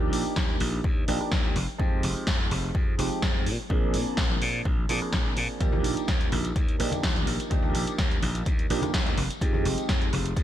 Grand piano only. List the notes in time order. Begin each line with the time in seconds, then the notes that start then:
Already playing: F3 A#3 D4 D#4 G4
1.08 F3 A#3 D4 D#4 G4
1.78 F3 G#3 C4 D#4 G4
2.98 F3 G#3 C4 D#4 G4
3.69 F3 A#3 C4 D4 G#4
4.89 F3 A#3 C4 D4 G#4
5.60 F3 A#3 D4 D#4 G4
6.79 F3 A#3 D4 D#4 G4
7.50 F3 A#3 D4 D#4 G4
8.70 F3 A#3 D4 D#4 G4
9.41 F3 G#3 C4 D#4 G4